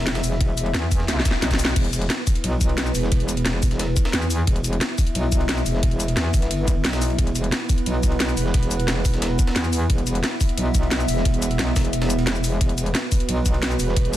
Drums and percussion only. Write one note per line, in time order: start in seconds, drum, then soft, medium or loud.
0.07 snare loud
0.07 closed hi-hat medium
0.07 ride medium
0.15 snare loud
0.15 ride medium
0.15 shaker soft
0.24 open hi-hat medium
0.24 ride medium
0.24 shaker medium
0.32 snare soft
0.41 kick loud
0.41 closed hi-hat medium
0.41 ride medium
0.58 closed hi-hat loud
0.58 ride medium
0.58 shaker medium
0.66 ride soft
0.74 snare loud
0.74 closed hi-hat medium
0.74 ride medium
0.91 kick loud
0.91 open hi-hat medium
0.91 ride medium
0.91 shaker medium
1.00 snare medium
1.08 snare medium
1.08 closed hi-hat medium
1.08 ride medium
1.08 shaker soft
1.20 snare medium
1.25 kick loud
1.25 snare loud
1.25 closed hi-hat medium
1.25 ride medium
1.25 shaker medium
1.31 snare medium
1.42 snare loud
1.42 closed hi-hat medium
1.42 ride medium
1.51 kick medium
1.51 snare loud
1.51 ride medium
1.51 shaker soft
1.54 snare loud
1.59 open hi-hat medium
1.59 shaker medium
1.65 snare loud
1.65 ride medium
1.76 kick loud
1.76 closed hi-hat loud
1.76 crash loud
1.76 ride medium
1.85 closed hi-hat soft
1.93 closed hi-hat medium
1.93 ride medium
1.93 shaker medium
2.02 closed hi-hat soft
2.10 snare loud
2.10 closed hi-hat loud
2.10 ride medium
2.27 kick loud
2.27 open hi-hat medium
2.27 ride medium
2.27 shaker medium
2.35 closed hi-hat soft
2.35 ride soft
2.44 closed hi-hat loud
2.44 ride medium
2.61 kick medium
2.61 closed hi-hat medium
2.61 ride medium
2.61 shaker medium
2.69 ride soft
2.78 snare loud
2.78 closed hi-hat loud
2.78 ride medium
2.86 shaker soft
2.95 open hi-hat medium
2.95 ride medium
2.95 shaker medium
3.03 snare soft
3.12 kick loud
3.12 closed hi-hat loud
3.12 ride medium
3.20 closed hi-hat soft
3.29 closed hi-hat medium
3.29 ride medium
3.29 shaker medium
3.37 closed hi-hat soft
3.37 ride soft
3.46 snare loud
3.46 closed hi-hat loud
3.46 ride medium
3.63 kick loud
3.63 open hi-hat medium
3.63 ride medium
3.63 shaker medium
3.71 snare medium
3.71 closed hi-hat soft
3.79 snare loud
3.79 closed hi-hat loud
3.79 ride medium
3.96 kick loud
3.96 closed hi-hat medium
3.96 ride medium
3.96 shaker medium
4.05 snare loud
4.05 ride medium
4.13 snare loud
4.13 closed hi-hat loud
4.22 ride medium
4.22 shaker soft
4.30 open hi-hat medium
4.30 ride medium
4.30 shaker medium
4.47 kick loud
4.47 closed hi-hat loud
4.47 ride medium
4.56 closed hi-hat soft
4.64 closed hi-hat medium
4.64 ride medium
4.64 shaker medium
4.73 closed hi-hat soft
4.81 snare loud
4.81 closed hi-hat loud
4.81 ride medium
4.98 kick loud
4.98 open hi-hat medium
4.98 ride medium
4.98 shaker medium
5.07 closed hi-hat soft
5.07 ride soft
5.15 closed hi-hat medium
5.15 ride medium
5.32 kick medium
5.32 closed hi-hat medium
5.32 ride medium
5.32 shaker medium
5.41 ride soft
5.49 snare loud
5.49 closed hi-hat loud
5.49 ride medium
5.58 shaker soft
5.66 open hi-hat medium
5.66 ride medium
5.66 shaker medium
5.75 snare soft
5.83 kick loud
5.83 closed hi-hat loud
5.83 ride medium
5.91 closed hi-hat soft
6.00 closed hi-hat medium
6.00 ride medium
6.00 shaker medium
6.08 closed hi-hat soft
6.08 ride soft
6.17 snare loud
6.17 closed hi-hat medium
6.17 ride medium
6.34 kick loud
6.34 open hi-hat medium
6.34 ride medium
6.34 shaker medium
6.42 snare medium
6.42 closed hi-hat soft
6.51 closed hi-hat medium
6.51 ride medium
6.68 kick loud
6.68 closed hi-hat medium
6.68 ride medium
6.68 shaker medium
6.85 snare loud
6.85 snare medium
6.85 closed hi-hat loud
6.85 ride medium
6.89 snare medium
6.89 ride medium
6.93 snare loud
6.93 ride medium
6.93 shaker soft
7.02 open hi-hat medium
7.02 ride medium
7.02 shaker medium
7.10 ride soft
7.19 kick loud
7.19 closed hi-hat medium
7.19 ride medium
7.27 closed hi-hat soft
7.35 closed hi-hat medium
7.35 ride medium
7.35 shaker medium
7.44 closed hi-hat soft
7.52 snare loud
7.52 closed hi-hat medium
7.52 ride medium
7.69 kick loud
7.69 open hi-hat medium
7.69 ride medium
7.69 shaker medium
7.78 closed hi-hat soft
7.78 ride soft
7.86 closed hi-hat medium
7.86 ride medium
8.03 kick medium
8.03 closed hi-hat medium
8.03 ride medium
8.03 shaker medium
8.12 ride soft
8.20 snare loud
8.20 closed hi-hat medium
8.20 ride medium
8.29 shaker soft
8.37 open hi-hat medium
8.37 ride medium
8.37 shaker medium
8.46 snare soft
8.54 kick loud
8.54 closed hi-hat medium
8.54 ride medium
8.63 closed hi-hat soft
8.71 closed hi-hat medium
8.71 ride medium
8.71 shaker medium
8.80 closed hi-hat soft
8.80 ride soft
8.88 snare loud
8.88 closed hi-hat medium
8.88 ride medium
9.05 kick loud
9.05 open hi-hat medium
9.05 ride medium
9.05 shaker medium
9.14 snare medium
9.14 closed hi-hat soft
9.22 snare loud
9.22 closed hi-hat medium
9.22 ride medium
9.39 kick loud
9.39 closed hi-hat medium
9.39 ride medium
9.39 shaker medium
9.47 snare loud
9.47 ride medium
9.56 snare loud
9.56 closed hi-hat medium
9.64 ride medium
9.64 shaker soft
9.73 open hi-hat medium
9.73 ride medium
9.73 shaker medium
9.90 kick loud
9.90 closed hi-hat medium
9.90 ride medium
9.98 closed hi-hat soft
10.07 closed hi-hat medium
10.07 ride medium
10.07 shaker medium
10.15 closed hi-hat soft
10.24 snare loud
10.24 closed hi-hat medium
10.24 ride medium
10.41 kick loud
10.41 open hi-hat medium
10.41 ride medium
10.41 shaker medium
10.49 closed hi-hat soft
10.49 ride soft
10.58 closed hi-hat medium
10.58 ride medium
10.74 kick medium
10.74 closed hi-hat medium
10.74 ride medium
10.74 shaker medium
10.83 ride soft
10.91 snare loud
10.91 closed hi-hat medium
10.91 ride medium
11.00 shaker soft
11.08 open hi-hat medium
11.08 ride medium
11.08 shaker medium
11.17 snare soft
11.25 kick loud
11.25 closed hi-hat loud
11.25 ride medium
11.34 closed hi-hat soft
11.42 closed hi-hat medium
11.42 ride medium
11.42 shaker medium
11.51 closed hi-hat soft
11.51 ride soft
11.59 snare loud
11.59 closed hi-hat medium
11.59 ride medium
11.76 kick loud
11.76 snare loud
11.76 open hi-hat medium
11.76 ride medium
11.76 shaker medium
11.85 closed hi-hat soft
11.93 closed hi-hat medium
11.93 ride medium
11.93 shaker soft
12.02 snare loud
12.02 ride medium
12.10 closed hi-hat medium
12.10 shaker medium
12.19 ride medium
12.27 snare loud
12.27 closed hi-hat loud
12.27 ride medium
12.35 shaker soft
12.44 open hi-hat medium
12.44 ride medium
12.44 shaker medium
12.61 kick loud
12.61 closed hi-hat loud
12.61 ride medium
12.69 closed hi-hat soft
12.78 closed hi-hat medium
12.78 ride medium
12.78 shaker medium
12.86 closed hi-hat soft
12.95 snare loud
12.95 closed hi-hat loud
12.95 ride medium
13.12 kick loud
13.12 open hi-hat medium
13.12 ride medium
13.12 shaker medium
13.20 closed hi-hat soft
13.20 ride soft
13.29 closed hi-hat loud
13.29 ride medium
13.46 kick medium
13.46 closed hi-hat medium
13.46 ride medium
13.46 shaker medium
13.54 ride soft
13.63 snare loud
13.63 closed hi-hat loud
13.63 ride medium
13.71 shaker soft
13.80 open hi-hat medium
13.80 ride medium
13.80 shaker medium
13.88 snare soft
13.96 kick loud
13.96 closed hi-hat loud
13.96 ride medium
14.05 closed hi-hat soft
14.13 closed hi-hat medium
14.13 ride medium
14.13 shaker medium